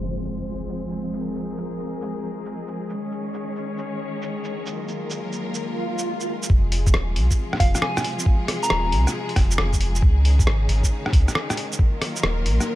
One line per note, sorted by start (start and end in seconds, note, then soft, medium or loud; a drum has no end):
0.00 2.93 F3 medium
0.00 4.69 G#3 medium
0.00 6.51 G#3 medium
0.00 2.93 C4 medium
0.00 4.69 G#4 medium
0.00 6.51 G#4 medium
0.00 1.19 C5 medium
0.00 impact medium
0.00 shaker soft
0.25 shaker medium
0.69 shaker medium
0.91 shaker soft
1.13 shaker soft
1.20 2.95 A#4 medium
1.35 shaker soft
1.57 shaker medium
1.79 shaker soft
2.02 shaker medium
2.45 shaker medium
2.67 shaker soft
2.90 shaker soft
2.97 6.46 D#3 medium
2.97 4.72 C#4 medium
2.97 4.72 C#5 medium
3.12 shaker soft
3.34 shaker soft
3.56 shaker soft
3.78 shaker medium
4.22 shaker soft
4.44 shaker soft
4.66 shaker medium
4.73 6.48 F#3 medium
4.73 6.48 A#3 medium
4.73 6.48 F4 medium
4.73 6.48 A#4 medium
4.88 shaker soft
5.10 shaker soft
5.32 shaker soft
5.54 shaker medium
5.61 swell medium
5.98 shaker soft
6.20 shaker soft
6.43 shaker medium
6.50 6.93 F1 loud
6.50 9.99 C3 medium
6.50 9.99 F3 medium
6.50 11.75 G#3 medium
6.50 9.99 F4 medium
6.50 11.75 G#4 medium
6.50 kick loud
6.72 open hi-hat medium
6.87 kick loud
6.87 shaker medium
6.94 7.18 D#1 medium
6.94 cross-stick loud
7.16 7.30 C2 loud
7.16 open hi-hat medium
7.31 kick medium
7.31 shaker medium
7.53 cross-stick medium
7.60 7.74 F1 loud
7.60 7.69 F5 loud
7.60 kick loud
7.60 open hi-hat medium
7.75 7.79 F5 medium
7.75 cross-stick soft
7.75 shaker medium
7.82 8.06 G#5 medium
7.82 cross-stick loud
7.97 cross-stick medium
7.97 shaker soft
8.04 open hi-hat medium
8.19 shaker medium
8.26 kick loud
8.48 cross-stick medium
8.48 open hi-hat medium
8.63 9.07 A#5 medium
8.63 shaker medium
8.70 8.94 D#1 medium
8.70 cross-stick loud
8.92 9.06 C2 loud
8.92 open hi-hat medium
9.07 cross-stick soft
9.07 shaker medium
9.29 open hi-hat soft
9.36 9.57 F1 medium
9.36 kick loud
9.36 cross-stick medium
9.36 open hi-hat medium
9.51 shaker medium
9.58 10.02 F1 medium
9.58 cross-stick loud
9.73 kick medium
9.73 shaker soft
9.81 open hi-hat medium
9.95 shaker medium
10.02 10.46 C#2 loud
10.02 11.77 C#3 medium
10.02 12.75 D#3 medium
10.02 11.77 D#4 medium
10.02 kick loud
10.25 open hi-hat medium
10.39 kick loud
10.39 shaker medium
10.47 10.68 G#1 medium
10.47 cross-stick loud
10.69 10.82 G#1 loud
10.69 open hi-hat medium
10.83 kick medium
10.83 shaker medium
11.06 cross-stick medium
11.13 11.27 C#2 loud
11.13 kick loud
11.13 open hi-hat medium
11.28 cross-stick soft
11.28 shaker medium
11.35 cross-stick loud
11.50 cross-stick medium
11.50 shaker soft
11.57 open hi-hat medium
11.72 shaker medium
11.79 12.75 F#3 medium
11.79 12.75 A#3 medium
11.79 12.75 F4 medium
11.79 12.75 A#4 medium
11.79 kick loud
12.02 cross-stick medium
12.02 open hi-hat medium
12.16 shaker medium
12.23 12.47 D#1 medium
12.23 cross-stick loud
12.45 12.59 A#1 loud
12.45 open hi-hat medium
12.60 cross-stick soft
12.60 shaker medium